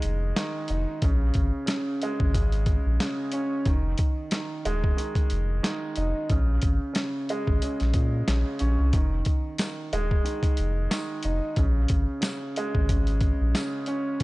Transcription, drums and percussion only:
0.02 closed hi-hat
0.36 snare, closed hi-hat
0.68 closed hi-hat
1.02 kick, closed hi-hat
1.34 kick, closed hi-hat
1.67 snare, closed hi-hat
2.02 closed hi-hat
2.20 kick
2.34 kick, closed hi-hat
2.52 closed hi-hat
2.66 kick, closed hi-hat
3.00 snare, closed hi-hat
3.32 closed hi-hat
3.65 kick, closed hi-hat
3.98 kick, closed hi-hat
4.31 snare, closed hi-hat
4.65 closed hi-hat
4.84 kick
4.98 closed hi-hat
5.15 kick, closed hi-hat
5.30 closed hi-hat
5.64 snare, closed hi-hat
5.96 closed hi-hat
6.29 kick, closed hi-hat
6.62 kick, closed hi-hat
6.95 snare, closed hi-hat
7.29 closed hi-hat
7.47 kick
7.62 closed hi-hat
7.80 snare, closed hi-hat
7.94 kick, closed hi-hat
8.28 snare, closed hi-hat
8.59 closed hi-hat
8.93 kick, closed hi-hat
9.25 kick, closed hi-hat
9.58 snare, closed hi-hat, tambourine
9.93 closed hi-hat
10.11 kick
10.26 closed hi-hat
10.43 kick, closed hi-hat
10.57 closed hi-hat
10.91 snare, closed hi-hat, tambourine
11.23 closed hi-hat
11.56 kick, closed hi-hat
11.88 kick, closed hi-hat
12.22 snare, closed hi-hat, tambourine
12.56 closed hi-hat
12.75 kick
12.89 kick, closed hi-hat
13.07 closed hi-hat
13.21 kick, closed hi-hat
13.55 snare, closed hi-hat, tambourine
13.86 closed hi-hat
14.20 closed hi-hat

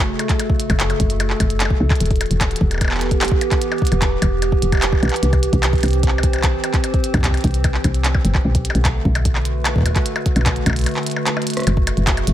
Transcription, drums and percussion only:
0.19 closed hi-hat, percussion blips
0.29 kick, clap, closed hi-hat
0.40 closed hi-hat, percussion blips
0.50 kick
0.60 closed hi-hat
0.70 kick, closed hi-hat, percussion blips
0.80 clap, closed hi-hat
0.90 closed hi-hat, percussion blips
1.00 kick, closed hi-hat
1.10 closed hi-hat
1.20 closed hi-hat, percussion blips
1.30 clap
1.40 kick, closed hi-hat, percussion blips
1.50 closed hi-hat
1.60 clap, closed hi-hat
1.65 percussion blips
1.70 kick
1.90 kick, clap, closed hi-hat, percussion blips
1.95 closed hi-hat
2.00 closed hi-hat
2.06 closed hi-hat
2.11 kick, closed hi-hat
2.16 closed hi-hat
2.21 closed hi-hat, percussion blips
2.26 closed hi-hat
2.31 closed hi-hat
2.41 kick, clap, closed hi-hat, percussion blips
2.51 closed hi-hat
2.56 closed hi-hat
2.61 kick
2.71 closed hi-hat, percussion blips
2.74 percussion blips
2.78 kick, closed hi-hat, percussion blips
2.81 percussion blips
2.85 percussion blips
2.88 clap, percussion blips
2.91 clap, percussion blips
2.98 clap
3.01 clap, closed hi-hat
3.05 clap
3.08 kick, clap, closed hi-hat
3.21 clap, closed hi-hat, percussion blips
3.25 closed hi-hat
3.28 kick, closed hi-hat
3.41 closed hi-hat, percussion blips
3.51 kick, clap, closed hi-hat
3.62 closed hi-hat
3.72 closed hi-hat, percussion blips
3.78 kick, closed hi-hat
3.85 closed hi-hat
3.87 closed hi-hat
3.92 closed hi-hat, percussion blips
4.02 kick, clap, closed hi-hat
4.22 kick, closed hi-hat, percussion blips
4.42 closed hi-hat, percussion blips
4.52 kick
4.62 closed hi-hat
4.72 kick, closed hi-hat, percussion blips
4.75 percussion blips
4.77 percussion blips
4.80 clap, closed hi-hat, percussion blips
4.82 percussion blips
4.87 percussion blips
4.90 kick, percussion blips
4.92 percussion blips
4.95 percussion blips
4.98 percussion blips
5.00 closed hi-hat, percussion blips
5.03 percussion blips
5.05 percussion blips
5.08 closed hi-hat, percussion blips
5.10 clap, percussion blips
5.16 closed hi-hat
5.23 closed hi-hat
5.33 kick, closed hi-hat, percussion blips
5.43 closed hi-hat
5.53 kick, closed hi-hat
5.63 clap, closed hi-hat, percussion blips
5.73 kick, closed hi-hat
5.76 closed hi-hat
5.78 closed hi-hat
5.81 closed hi-hat
5.83 closed hi-hat, percussion blips
5.86 closed hi-hat
5.88 closed hi-hat
5.91 closed hi-hat
5.93 closed hi-hat
6.03 kick, closed hi-hat
6.08 clap
6.18 percussion blips
6.23 kick, closed hi-hat
6.33 closed hi-hat, percussion blips
6.36 percussion blips
6.38 percussion blips
6.41 kick, clap, closed hi-hat, percussion blips
6.44 percussion blips
6.49 percussion blips
6.51 percussion blips
6.64 closed hi-hat, percussion blips
6.74 kick, clap, closed hi-hat
6.84 closed hi-hat, percussion blips
6.94 kick, closed hi-hat
7.04 closed hi-hat
7.14 kick, closed hi-hat, percussion blips
7.17 kick
7.21 kick
7.24 kick, clap, closed hi-hat
7.27 kick
7.31 kick, closed hi-hat, percussion blips
7.37 closed hi-hat
7.41 closed hi-hat
7.44 kick, closed hi-hat
7.47 closed hi-hat
7.51 closed hi-hat
7.54 closed hi-hat
7.64 kick, closed hi-hat, percussion blips
7.74 clap
7.84 kick, closed hi-hat, percussion blips
7.94 closed hi-hat
8.05 clap, closed hi-hat
8.15 kick, percussion blips
8.25 closed hi-hat
8.35 kick, clap, percussion blips
8.55 kick, closed hi-hat
8.65 closed hi-hat
8.70 percussion blips
8.75 closed hi-hat
8.85 kick, clap, closed hi-hat, percussion blips
9.05 kick
9.15 closed hi-hat, percussion blips
9.25 kick, closed hi-hat
9.35 clap, percussion blips
9.45 closed hi-hat
9.65 clap, closed hi-hat, percussion blips
9.76 kick
9.78 kick
9.81 kick
9.83 kick, closed hi-hat, percussion blips
9.86 kick
9.88 kick
9.91 kick
9.93 kick, clap, closed hi-hat
9.96 kick
10.06 closed hi-hat
10.16 closed hi-hat, percussion blips
10.26 kick, closed hi-hat
10.36 closed hi-hat, percussion blips
10.41 percussion blips
10.46 kick, clap, closed hi-hat, percussion blips
10.51 percussion blips
10.56 closed hi-hat
10.66 kick, closed hi-hat, percussion blips
10.70 percussion blips
10.73 closed hi-hat, percussion blips
10.79 closed hi-hat
10.81 closed hi-hat
10.84 closed hi-hat
10.86 closed hi-hat, percussion blips
10.89 closed hi-hat
10.94 clap, closed hi-hat
10.96 closed hi-hat
11.03 closed hi-hat
11.06 closed hi-hat
11.10 closed hi-hat
11.11 closed hi-hat
11.16 percussion blips
11.27 cross-stick, clap, closed hi-hat
11.37 cross-stick, percussion blips
11.42 closed hi-hat
11.47 closed hi-hat
11.50 closed hi-hat
11.54 cross-stick, closed hi-hat
11.57 cross-stick, closed hi-hat
11.60 cross-stick, closed hi-hat
11.63 cross-stick, closed hi-hat
11.67 cross-stick, closed hi-hat, percussion blips
11.69 cross-stick
11.72 cross-stick
11.75 kick, cross-stick
11.87 closed hi-hat, percussion blips
11.97 closed hi-hat
12.07 kick, clap, closed hi-hat
12.17 closed hi-hat, percussion blips
12.27 closed hi-hat

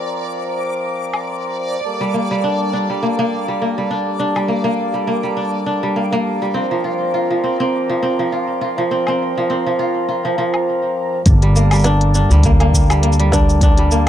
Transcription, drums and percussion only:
1.14 low woodblock
4.36 low woodblock
9.07 low woodblock
10.54 low woodblock
11.26 kick, closed hi-hat, shaker
11.42 closed hi-hat
11.56 shaker
11.71 closed hi-hat, low woodblock, shaker
11.74 shaker
11.79 shaker
11.81 shaker
11.83 snare, closed hi-hat, shaker
11.85 shaker
12.01 closed hi-hat
12.15 shaker
12.31 shaker
12.43 kick, closed hi-hat, shaker
12.60 closed hi-hat, low woodblock
12.73 kick, shaker
12.90 closed hi-hat, low woodblock, shaker
13.03 closed hi-hat
13.12 shaker
13.20 closed hi-hat
13.32 kick, snare, shaker
13.49 shaker
13.61 kick, closed hi-hat, shaker
13.78 closed hi-hat
13.91 shaker

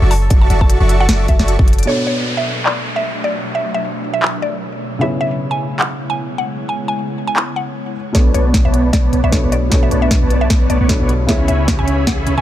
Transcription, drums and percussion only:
0.11 open hi-hat
0.30 kick, closed hi-hat
0.50 closed hi-hat
0.61 kick
0.70 closed hi-hat
0.89 closed hi-hat
1.09 snare, closed hi-hat
1.28 kick, closed hi-hat
1.39 snare
1.48 closed hi-hat
1.59 kick
1.68 closed hi-hat
1.73 closed hi-hat
1.79 closed hi-hat
1.83 closed hi-hat
2.66 clap
4.23 clap
5.79 clap
7.36 clap
8.15 kick, snare, closed hi-hat
8.34 closed hi-hat
8.54 kick, snare, closed hi-hat
8.74 closed hi-hat
8.93 kick, snare, closed hi-hat
9.13 closed hi-hat
9.32 kick, snare, closed hi-hat
9.52 closed hi-hat
9.72 kick, snare, closed hi-hat
9.91 closed hi-hat
10.11 kick, snare, closed hi-hat
10.30 closed hi-hat
10.50 kick, snare, closed hi-hat
10.70 closed hi-hat
10.89 kick, snare, closed hi-hat
11.09 closed hi-hat
11.29 kick, snare, closed hi-hat
11.48 closed hi-hat
11.68 kick, snare, closed hi-hat
11.88 closed hi-hat
12.07 kick, snare, closed hi-hat
12.27 closed hi-hat

